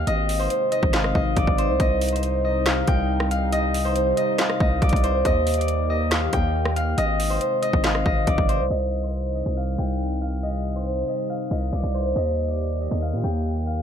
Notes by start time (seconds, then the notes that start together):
Already playing: C5 F5 G5
0.07 G#1 C3 G#3 D#4 D#5, closed hi-hat
0.29 open hi-hat
0.39 C5
0.50 closed hi-hat
0.72 D#5, closed hi-hat
0.83 G#1, kick
0.93 F5, snare, clap, closed hi-hat
1.04 cross-stick
1.15 G#1 D#5, kick
1.37 G#1 D5, kick, closed hi-hat
1.47 G#1, kick
1.58 C5, closed hi-hat
1.69 C2
1.80 C2 G3 D#5, kick, closed hi-hat
2.01 closed hi-hat, open hi-hat
2.09 C5, closed hi-hat
2.16 closed hi-hat
2.23 closed hi-hat
2.45 D#5
2.66 F5, snare, clap, closed hi-hat
2.87 C2 G5, kick, closed hi-hat
3.20 cross-stick
3.31 F5, closed hi-hat
3.52 D#5, closed hi-hat
3.74 open hi-hat
3.85 C5
3.96 closed hi-hat
4.17 D#5, closed hi-hat
4.38 F5, snare, clap, closed hi-hat
4.50 cross-stick
4.60 C2 D#5, kick
4.82 C2 D5, kick, closed hi-hat
4.89 C2, kick, closed hi-hat
4.96 closed hi-hat
5.04 C5, closed hi-hat
5.25 D#2 D#3 A#3 G4 D#5, kick, closed hi-hat
5.47 closed hi-hat, open hi-hat
5.54 D5, closed hi-hat
5.61 closed hi-hat
5.68 closed hi-hat
5.90 D#5
6.11 F5, snare, clap, closed hi-hat
6.33 D#2 G5, kick, closed hi-hat
6.65 cross-stick
6.76 F5, closed hi-hat
6.98 G#1 C3 G#3 D#4 D#5, closed hi-hat
7.20 open hi-hat
7.30 C5
7.41 closed hi-hat
7.62 D#5, closed hi-hat
7.73 G#1, kick
7.84 F5, snare, clap, closed hi-hat
7.95 cross-stick
8.06 G#1 D#5, kick
8.27 G#1 D5, kick, closed hi-hat
8.38 G#1, kick
8.49 C5, closed hi-hat
8.60 C2
8.70 C2 C3 G3 D#4 D#5
9.03 C5
9.35 D#5
9.46 C2
9.57 F5
9.78 C2 G5
10.22 F5
10.43 D#5
10.76 C5
11.08 D#5
11.30 F5
11.51 C2 D#5
11.73 C2 D5
11.83 C2
11.94 C5
12.16 D#2 D#3 A#3 G4 D#5
12.48 D5
12.81 D#5
12.91 D#2
13.02 F5
13.13 A#2
13.24 D#2 G5
13.67 F5